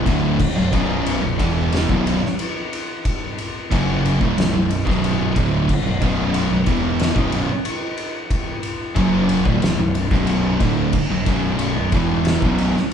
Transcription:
0.06 fingered electric bass D1, distorted electric guitar D2 A2 D3, kick, ride
0.40 kick, crash
0.56 fingered electric bass B0, distorted electric guitar B1 F#2
0.72 fingered electric bass B0, distorted electric guitar B1 F#2 B2, kick, ride
1.06 ride
1.23 fingered electric bass B0, distorted electric guitar B1 F#2
1.38 fingered electric bass E1, distorted electric guitar E2 B2 E3, kick, ride
1.72 snare, ride
1.87 fingered electric bass B0, distorted electric guitar B1 F#2 B2, kick
2.07 ride
2.26 snare
2.39 ride
2.73 ride
3.05 kick, ride
3.38 ride
3.71 fingered electric bass F#1, distorted electric guitar F#2 C#3 F#3, kick, ride
4.05 ride
4.21 fingered electric bass D1, distorted electric guitar D2 A2, kick
4.36 fingered electric bass B0, distorted electric guitar B1 F#2, snare, ride
4.53 fingered electric bass B0, distorted electric guitar B1 F#2
4.70 ride
4.87 fingered electric bass B0, distorted electric guitar B1 F#2 B2, kick, snare
5.04 ride
5.36 fingered electric bass D1, distorted electric guitar D2 A2 D3, kick, ride
5.69 kick, crash
5.84 fingered electric bass B0, distorted electric guitar B1, overdriven electric guitar F#2
5.88 distorted electric guitar F#2
6.02 fingered electric bass B0, distorted electric guitar B1 F#2 B2, kick, ride
6.34 ride
6.51 fingered electric bass B0, distorted electric guitar B1 F#2
6.66 fingered electric bass E1, distorted electric guitar E2 B2 E3, kick, ride
6.99 snare, ride
7.15 fingered electric bass B0, distorted electric guitar B1 F#2 B2, kick
7.32 ride
7.65 ride
7.97 ride
8.31 kick, ride
8.63 ride
8.96 fingered electric bass F#1, distorted electric guitar F#2 C#3 F#3, kick, ride
9.29 ride
9.45 fingered electric bass D1, distorted electric guitar D2 A2, kick
9.61 fingered electric bass B0, distorted electric guitar B1 F#2, snare, ride
9.77 fingered electric bass B0, distorted electric guitar B1 F#2
9.95 ride
10.11 fingered electric bass B0, distorted electric guitar B1 F#2 B2, kick, snare
10.27 ride
10.60 fingered electric bass D1, distorted electric guitar D2 A2 D3, kick, ride
10.93 kick, crash
11.09 fingered electric bass B0, distorted electric guitar B1 F#2
11.26 fingered electric bass B0, distorted electric guitar B1 F#2 B2, kick, ride
11.59 ride
11.76 fingered electric bass B0, distorted electric guitar B1 F#2
11.92 fingered electric bass E1, distorted electric guitar E2 B2 E3, kick, ride
12.25 snare, ride
12.42 fingered electric bass B0, distorted electric guitar B1 F#2 B2, kick
12.58 ride
12.77 snare

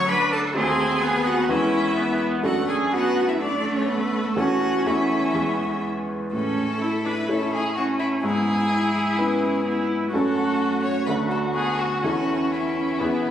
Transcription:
Already playing: grand piano D2 A3 C#4 F#4, viola F#3, violin C#6
0.09 viola D4, cello B4, violin B5
0.32 cello A4, violin A5
0.54 grand piano D#2 A3 C4 F#4, viola C4, cello G#4, violin G#5
1.02 viola B3
1.26 cello F#4, violin F#5
1.49 grand piano E2 G#3 B3 B4, viola C#4, cello E4, violin E5
1.97 viola B3
2.43 grand piano F#2 A3 D4 A4, viola A3, cello F#4, violin F#5
2.69 cello G#4, violin G#5
2.93 viola B3, cello F#4, violin F#5
3.28 cello E4, violin E5
3.40 viola A3, cello D4, violin D5
3.76 cello C#4, violin C#5
3.87 cello B3, violin B4
4.25 cello A3, violin A4
4.36 grand piano E2 A3 C#4 A4, viola C#4, cello F#4, violin F#5
4.86 grand piano E2 A3 C#4 A4, cello E4, violin E5
5.34 grand piano E2 G#3 B3 B4
6.33 grand piano A2, viola C#4, cello C#4, violin A4
6.81 viola E4, cello E4
7.05 viola D4, violin B4
7.28 grand piano A3 E4 C#5, viola C#4, violin A4
7.53 violin G#4
7.76 viola C#4, cello C#4, violin F#4
7.99 violin E4
8.23 grand piano G#2, cello B3, viola E4, violin G#4
8.71 cello E4
9.17 grand piano B3 E4 B4, cello C#4
9.65 cello B3, viola E4
10.12 grand piano F#2 C#4 F#4 A4, cello A3, viola F#4, violin A4
10.83 violin C#5
11.06 grand piano D2 D4 F#4 A4, viola F#4, violin B4
11.31 violin A4
11.54 cello B3, violin G#4
11.79 violin F#4
12.03 grand piano E2 C#4 E4 A4, viola C#4, cello C#4, violin F#4
12.52 viola C#4, violin E4
13.00 grand piano E2 B3 E4 G#4, viola B3

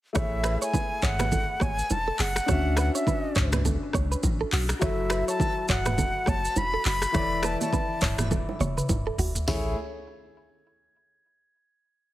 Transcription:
0.13 sub bass A1, grand piano A3 E4 G#4, clean electric guitar C#5, flute E5, finger snap, kick, cross-stick, low conga, shaker
0.18 grand piano C#5
0.44 clean electric guitar B4, finger snap, cross-stick, shaker
0.62 clean electric guitar C#5, flute G#5, shaker
0.74 clean electric guitar B4, kick, high bongo, low conga, shaker
1.02 sub bass G#1, clean electric guitar C#5, flute F#5, kick, clap, mid tom, shaker
1.19 clean electric guitar B4, finger snap, cross-stick, mid tom, low bongo, shaker
1.32 clean electric guitar A4, kick, low conga, shaker
1.60 sub bass G#1, clean electric guitar C#5, flute G#5, kick, cross-stick, low bongo, shaker
1.78 clean electric guitar B4, shaker
1.90 sub bass E1, flute A5, high bongo, shaker
2.08 clean electric guitar A4
2.19 sub bass F#1, clean electric guitar G#4, flute F#5, clap, open hi-hat, shaker
2.36 finger snap, cross-stick, shaker
2.46 sub bass D2, grand piano C#4 D4 F#4, clean electric guitar C#5, finger snap, kick, cross-stick, low conga, shaker
2.51 grand piano E5
2.77 clean electric guitar B4, flute F#5, finger snap, cross-stick, shaker
2.95 clean electric guitar C#5, flute E5, shaker
3.07 clean electric guitar B4, kick, high bongo, low conga, shaker
3.35 sub bass C#2, clean electric guitar C#5, kick, clap, mid tom, shaker
3.52 clean electric guitar B4, finger snap, cross-stick, mid tom, low bongo, shaker
3.65 clean electric guitar A4, kick, low conga, shaker
3.93 sub bass C#2, clean electric guitar C#5, kick, cross-stick, low bongo, shaker
4.12 clean electric guitar B4, shaker
4.23 sub bass A1, kick, high bongo, shaker
4.41 clean electric guitar A4
4.52 sub bass B1, clean electric guitar F#4, clap, open hi-hat, shaker
4.69 finger snap, cross-stick, shaker
4.79 sub bass F#1, grand piano F#3 E4 F#4, clean electric guitar C#5, flute E5, finger snap, kick, cross-stick, low conga, shaker
4.84 grand piano A4
5.10 clean electric guitar B4, finger snap, cross-stick, shaker
5.28 clean electric guitar C#5, flute A5, shaker
5.40 clean electric guitar B4, kick, high bongo, low conga, shaker
5.68 sub bass E1, clean electric guitar C#5, flute F#5, kick, clap, mid tom, shaker
5.86 clean electric guitar B4, finger snap, cross-stick, mid tom, low bongo, shaker
5.98 clean electric guitar A4, kick, low conga, shaker
6.26 sub bass F#1, clean electric guitar C#5, flute A5, kick, cross-stick, low bongo, shaker
6.45 clean electric guitar B4, shaker
6.56 sub bass E1, flute B5, high bongo, shaker
6.74 clean electric guitar A4
6.85 sub bass F#1, clean electric guitar F#4, flute B5, clap, open hi-hat, shaker
7.02 finger snap, cross-stick, shaker
7.12 sub bass E1, grand piano E3 E4 A4, clean electric guitar C#5, finger snap, kick, cross-stick, low conga, shaker
7.17 grand piano D5
7.43 clean electric guitar B4, flute A5, finger snap, cross-stick, low bongo, shaker
7.61 clean electric guitar C#5, flute A5, low bongo, shaker
7.73 clean electric guitar B4, kick, high bongo, low conga, shaker
8.01 sub bass D1, clean electric guitar C#5, kick, clap, mid tom, open hi-hat, shaker
8.18 clean electric guitar B4, finger snap, cross-stick, mid tom, low bongo, shaker
8.31 clean electric guitar A4, kick, high tom, high bongo, low conga, shaker
8.49 high bongo
8.60 sub bass E1, clean electric guitar C#5, mid tom, low bongo, shaker
8.77 clean electric guitar B4, mid tom, shaker
8.89 sub bass D1, kick, mid tom, high bongo, shaker
9.07 clean electric guitar A4
9.18 sub bass E1, clean electric guitar F#4, floor tom, open hi-hat, shaker
9.35 floor tom, shaker
9.48 sub bass A1, grand piano A3 E4 G#4 C#5, clean electric guitar E4, snare, floor tom, open hi-hat, low conga

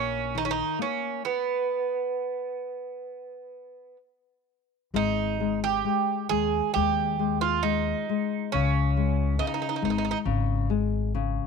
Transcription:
Already playing: upright bass A#1, nylon-string guitar A#3, bouzouki C#4
0.35 nylon-string guitar D#3, bouzouki D#4
0.45 bouzouki C#4
0.51 bouzouki D#4
0.79 nylon-string guitar A#3, bouzouki C#4
1.25 bouzouki B3
4.94 upright bass G#1, nylon-string guitar G#3, bouzouki D#4
5.40 nylon-string guitar G#3
5.64 bouzouki G4
5.85 nylon-string guitar G#3
6.29 upright bass D#2, nylon-string guitar G#3, bouzouki G#4
6.74 upright bass D#2, nylon-string guitar G#3, bouzouki G4
7.19 nylon-string guitar G#3
7.41 bouzouki F4
7.63 nylon-string guitar G#3, bouzouki D#4
8.09 nylon-string guitar G#3
8.52 upright bass C#2, nylon-string guitar C#3, bouzouki C#4
8.97 nylon-string guitar G#3
9.39 nylon-string guitar C#3, bouzouki D#4
9.47 bouzouki D#4
9.54 bouzouki D#4
9.62 bouzouki D#4
9.69 bouzouki D#4
9.76 bouzouki D#4
9.82 upright bass G#1, nylon-string guitar G#3, bouzouki D#4
9.90 bouzouki D#4
9.98 bouzouki D#4
10.05 bouzouki D#4
10.11 bouzouki D#4
10.25 upright bass G#1, nylon-string guitar C#3
10.70 nylon-string guitar G#3
11.15 nylon-string guitar C#3

